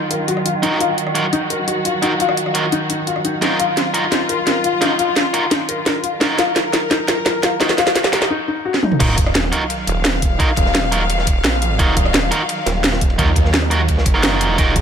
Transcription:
Already playing: string section D#3 F#3 F4
0.11 felt piano A#4, closed hi-hat
0.28 felt piano F#4, closed hi-hat
0.37 cross-stick
0.45 felt piano F4, closed hi-hat
0.62 distorted electric guitar D#4 F4 F#4 A#4, felt piano D#4, string section F#4, closed hi-hat
0.80 felt piano F4, closed hi-hat
0.98 closed hi-hat
1.07 cross-stick
1.15 distorted electric guitar D#4 F4 F#4 A#4, closed hi-hat
1.33 felt piano D#4, closed hi-hat
1.50 felt piano A#4, closed hi-hat
1.68 felt piano F#4, closed hi-hat
1.85 felt piano F4, closed hi-hat
2.02 distorted electric guitar D#4 F4 F#4 A#4, felt piano D#4, closed hi-hat
2.20 felt piano F4, closed hi-hat
2.29 cross-stick
2.37 closed hi-hat
2.46 cross-stick
2.54 distorted electric guitar D#4 F4 F#4 A#4, closed hi-hat
2.72 felt piano D#4, closed hi-hat
2.90 felt piano D#4, closed hi-hat
3.07 felt piano F4, closed hi-hat
3.16 cross-stick
3.25 felt piano D#4, closed hi-hat
3.41 distorted electric guitar D#4 F4 F#4 A#4, felt piano D#4, string section F4, snare, closed hi-hat
3.59 felt piano F4, closed hi-hat
3.77 snare, closed hi-hat
3.94 distorted electric guitar D#4 F4 F#4 A#4, closed hi-hat
4.12 felt piano D#4, snare, closed hi-hat
4.29 felt piano A#4, closed hi-hat
4.47 felt piano A#4, snare, closed hi-hat
4.64 felt piano F4, closed hi-hat
4.81 distorted electric guitar D#4 F4 F#4 A#4, felt piano D#4, snare, closed hi-hat
4.99 felt piano F4, closed hi-hat
5.16 snare, closed hi-hat
5.34 distorted electric guitar D#4 F4 F#4 A#4, closed hi-hat
5.51 felt piano D#4, snare, closed hi-hat
5.69 felt piano A#4, closed hi-hat
5.86 felt piano A#4, snare, closed hi-hat
6.04 felt piano F4, closed hi-hat
6.21 distorted electric guitar D#4 F4 F#4 A#4, felt piano D#4, string section A#4, snare, closed hi-hat
6.38 felt piano F4, snare, closed hi-hat
6.56 snare, closed hi-hat
6.73 snare, closed hi-hat
6.91 felt piano D#4, snare, closed hi-hat
7.08 felt piano A#4, snare, closed hi-hat
7.26 felt piano A#4, snare, closed hi-hat
7.43 felt piano F4, snare, closed hi-hat
7.60 distorted electric guitar D#4 F4 F#4 A#4, felt piano D#4, snare, closed hi-hat
7.69 snare
7.78 felt piano F4, snare, closed hi-hat
7.87 snare
7.96 snare, closed hi-hat
8.04 snare
8.13 distorted electric guitar D#4 F4 F#4 A#4, snare, closed hi-hat
8.22 snare
8.30 felt piano D#4
8.48 felt piano D#4
8.65 felt piano F#4
8.74 snare
8.83 felt piano D#4, mid tom
8.92 mid tom
9.00 detuned saw bass D#1, string section D#3 F#3 F5, distorted electric guitar D#4 F4 F#4 A#4, kick, closed hi-hat, crash, ride, sub drop
9.18 kick, closed hi-hat, ride
9.26 cross-stick, ride
9.34 detuned saw bass D#1, snare, closed hi-hat, ride
9.44 cross-stick, snare
9.52 distorted electric guitar D#4 F4 F#4 A#4, closed hi-hat, ride
9.70 closed hi-hat, ride
9.87 detuned saw bass D#1, closed hi-hat, ride
10.04 snare, closed hi-hat, ride
10.22 kick, closed hi-hat, ride
10.39 distorted electric guitar D#4 F4 F#4 A#4, kick, closed hi-hat, ride
10.56 detuned saw bass D#1, kick, closed hi-hat, ride
10.66 snare
10.75 snare, closed hi-hat, ride
10.83 cross-stick
10.92 distorted electric guitar D#4 F4 F#4 A#4, closed hi-hat, ride
11.10 closed hi-hat, ride
11.19 snare
11.27 kick, closed hi-hat, ride
11.44 detuned saw bass A#1, snare, closed hi-hat, ride
11.62 closed hi-hat, ride
11.79 detuned saw bass D#1, distorted electric guitar D#4 F4 F#4 A#4, kick, closed hi-hat, ride
11.97 kick, closed hi-hat, ride
12.06 cross-stick, ride
12.14 detuned saw bass D#1, snare, closed hi-hat, ride
12.23 cross-stick, snare
12.31 distorted electric guitar D#4 F4 F#4 A#4, closed hi-hat, ride
12.49 closed hi-hat, ride
12.66 detuned saw bass D#1, snare, closed hi-hat, ride
12.84 snare, closed hi-hat, ride
12.92 snare, ride
13.01 kick, closed hi-hat
13.10 ride
13.18 detuned saw bass D#2, distorted electric guitar D#4 F4 F#4 A#4, kick, closed hi-hat, ride
13.36 kick, closed hi-hat, ride
13.45 snare
13.54 snare, closed hi-hat, ride
13.62 cross-stick
13.71 detuned saw bass D#2, distorted electric guitar D#4 F4 F#4 A#4, closed hi-hat, ride
13.88 kick, closed hi-hat, ride
13.98 snare
14.05 detuned saw bass F#1, kick, closed hi-hat, ride
14.14 distorted electric guitar D#4 F4 F#4 A#4
14.23 snare, closed hi-hat, ride
14.32 cross-stick
14.41 closed hi-hat, ride
14.58 detuned saw bass D#1, string section G#3, distorted electric guitar D#4 F4 F#4 A#4, kick, closed hi-hat, ride
14.76 kick, closed hi-hat, ride

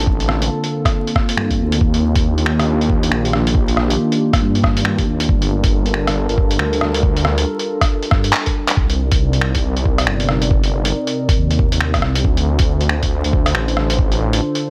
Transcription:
Already playing: detuned saw bass A1, ambient pad D3 A#3 C4 F4 A4
0.07 kick
0.20 closed hi-hat
0.29 cross-stick
0.42 closed hi-hat
0.64 closed hi-hat
0.85 kick, cross-stick, closed hi-hat
1.07 closed hi-hat
1.16 kick, cross-stick
1.29 closed hi-hat
1.37 detuned saw bass G2, finger snap
1.51 kick, closed hi-hat
1.59 detuned saw bass D2
1.72 closed hi-hat
1.80 detuned saw bass D#2, ambient pad D#3 D4 G4, kick
1.94 closed hi-hat
2.16 kick, closed hi-hat
2.38 closed hi-hat
2.46 finger snap
2.60 cross-stick, closed hi-hat
2.80 detuned saw bass D#2, closed hi-hat
2.90 kick
3.03 closed hi-hat
3.11 detuned saw bass A#1, finger snap
3.25 closed hi-hat
3.33 cross-stick
3.47 closed hi-hat
3.55 kick
3.68 closed hi-hat
3.77 cross-stick
3.90 closed hi-hat
4.12 closed hi-hat
4.33 kick, cross-stick, closed hi-hat
4.41 detuned saw bass G2
4.55 closed hi-hat
4.64 kick, cross-stick
4.77 closed hi-hat
4.85 finger snap
4.98 kick, closed hi-hat
5.06 detuned saw bass D#2
5.20 closed hi-hat
5.29 detuned saw bass G1, ambient pad G3 F4 A4 A#4, kick
5.42 closed hi-hat
5.64 kick, closed hi-hat
5.86 closed hi-hat
5.94 finger snap
6.08 cross-stick, closed hi-hat
6.29 detuned saw bass G1, closed hi-hat
6.38 kick
6.51 closed hi-hat
6.59 detuned saw bass D2, finger snap
6.73 closed hi-hat
6.81 cross-stick
6.94 closed hi-hat
7.03 kick
7.17 closed hi-hat
7.25 cross-stick
7.38 closed hi-hat
7.59 closed hi-hat
7.81 kick, cross-stick, closed hi-hat
8.03 closed hi-hat
8.11 detuned saw bass G2, kick, cross-stick
8.24 closed hi-hat
8.33 finger snap, clap
8.46 kick, closed hi-hat
8.68 clap, closed hi-hat
8.77 detuned saw bass C2, ambient pad C3 C4 D#4 A#4 D5, kick
8.90 closed hi-hat
9.12 kick, closed hi-hat
9.33 closed hi-hat
9.41 finger snap
9.55 kick, closed hi-hat
9.76 detuned saw bass C2, closed hi-hat
9.86 kick
9.98 cross-stick, closed hi-hat
10.07 detuned saw bass G1, finger snap
10.20 closed hi-hat
10.29 cross-stick
10.42 closed hi-hat
10.51 kick
10.63 closed hi-hat
10.85 closed hi-hat
11.07 closed hi-hat
11.29 kick, closed hi-hat
11.38 detuned saw bass D#2
11.51 closed hi-hat
11.59 kick
11.72 closed hi-hat
11.80 finger snap
11.94 kick, cross-stick, closed hi-hat
12.02 detuned saw bass C2, cross-stick
12.15 closed hi-hat
12.24 detuned saw bass D2, ambient pad D3 D4 F4 A4 C5, kick
12.37 closed hi-hat
12.59 kick, closed hi-hat
12.81 closed hi-hat
12.89 finger snap
13.03 kick, closed hi-hat
13.24 detuned saw bass D2, closed hi-hat
13.33 kick
13.46 cross-stick, closed hi-hat
13.55 detuned saw bass A1, finger snap
13.68 closed hi-hat
13.77 cross-stick
13.90 closed hi-hat
13.99 kick
14.12 closed hi-hat
14.33 closed hi-hat
14.55 closed hi-hat

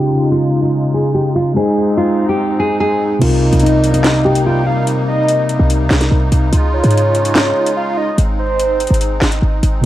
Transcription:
Already playing: tine electric piano C#3 C#4 D#4 F4, accordion C#3 G#3 D#4 F4, nylon-string guitar G4
0.32 nylon-string guitar F4
0.63 nylon-string guitar F4
0.94 nylon-string guitar G#4
1.14 nylon-string guitar G4
1.35 nylon-string guitar F4
1.54 accordion G#2 G#3 C4, tine electric piano G#3 D#4 C5, nylon-string guitar G#4
1.58 tine electric piano D#5
1.97 nylon-string guitar F4
2.29 nylon-string guitar G4
2.60 nylon-string guitar G#4
2.80 nylon-string guitar G#4
3.19 808-style bass C2, tine electric piano C3 C4 D#4, accordion C3 G3 A#3 D#4, nylon-string guitar F4, closed hi-hat, crash
3.23 tine electric piano A#4
3.42 soft synth lead D#5
3.53 808-style bass C2, closed hi-hat
3.60 nylon-string guitar D#4, closed hi-hat
3.66 closed hi-hat
3.84 closed hi-hat
3.93 nylon-string guitar D#4, closed hi-hat
4.04 snare, clap, closed hi-hat
4.25 nylon-string guitar G4
4.35 closed hi-hat
4.46 nylon-string guitar F4, soft synth lead G5
4.66 nylon-string guitar D#4, soft synth lead F5
4.87 closed hi-hat
5.08 soft synth lead D#5
5.28 closed hi-hat
5.49 closed hi-hat
5.60 808-style bass C2
5.70 closed hi-hat
5.80 808-style bass C#2
5.91 808-style bass C2, snare, clap
6.01 snare, closed hi-hat
6.11 808-style bass C2
6.32 808-style bass C2, closed hi-hat
6.53 808-style bass C#2, accordion C#3 G#3 F4, closed hi-hat
6.73 soft synth lead C#5
6.84 808-style bass G#2, closed hi-hat
6.91 closed hi-hat
6.97 closed hi-hat
7.15 closed hi-hat
7.25 closed hi-hat
7.35 snare, clap, closed hi-hat
7.66 closed hi-hat
7.77 soft synth lead F5
7.97 soft synth lead D#5
8.18 808-style bass G#1, accordion C4, closed hi-hat
8.39 soft synth lead C5
8.60 closed hi-hat
8.80 closed hi-hat
8.87 808-style bass G#1, closed hi-hat
8.94 closed hi-hat
9.01 closed hi-hat
9.22 808-style bass G#1, snare, clap
9.32 closed hi-hat
9.42 808-style bass G#1
9.63 808-style bass G#1, closed hi-hat
9.81 tine electric piano C3

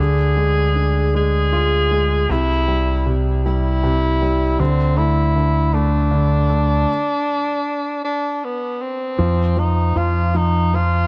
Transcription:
0.00 fingered electric bass D2, grand piano D3, tenor saxophone G#4
0.37 grand piano G#3
0.75 grand piano D4
1.15 grand piano G#3, tenor saxophone G#4
1.53 grand piano F4
1.91 grand piano G#3
2.29 fingered electric bass C2, grand piano C3, tenor saxophone E4
2.68 grand piano G3
3.06 grand piano C3
3.46 grand piano G3, tenor saxophone E4
3.83 grand piano C3
4.22 grand piano G3
4.60 fingered electric bass D2, grand piano D3, tenor saxophone C4
4.97 grand piano A3, tenor saxophone E4
5.35 grand piano D3
5.74 grand piano A3, tenor saxophone D4
6.11 grand piano D3
6.49 grand piano A3
8.04 tenor saxophone D4
8.44 tenor saxophone B3
8.81 tenor saxophone C4
9.18 fingered electric bass F2, grand piano F3
9.57 grand piano F3, tenor saxophone D#4
9.96 fingered electric bass F2, grand piano F3, tenor saxophone F4
10.35 grand piano F3, tenor saxophone D#4
10.74 grand piano F3, tenor saxophone F4

